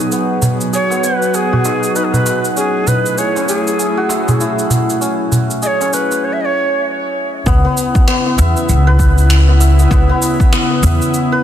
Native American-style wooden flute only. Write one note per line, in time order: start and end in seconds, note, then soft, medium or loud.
0.75 1.06 C#5 loud
1.04 1.36 B4 medium
1.35 1.97 G#4 medium
1.96 2.06 B4 medium
2.04 2.14 G#4 medium
2.13 2.45 B4 medium
2.57 2.89 G#4 medium
2.87 3.20 B4 medium
3.18 3.47 C#5 medium
3.48 4.67 G#4 medium
5.63 5.95 C#5 medium
5.63 5.68 D#5 medium
5.94 6.26 B4 medium
6.24 6.34 C#5 medium
6.33 6.42 E5 medium
6.41 6.46 D#5 medium
6.45 6.85 C#5 medium